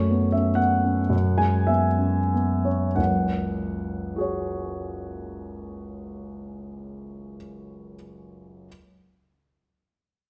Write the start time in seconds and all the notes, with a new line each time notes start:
Already playing: F#2 A3 C#5
0.10 B3
0.32 C#4 E5
0.55 B3 F#5
0.84 C#4
1.10 F#2
1.38 G#3 G#5
1.67 B3 E5
1.99 C#4
2.34 B3
2.65 C#4 C#5
2.95 F#1 C#2 F#5
4.16 F#4 G#4
4.21 C#5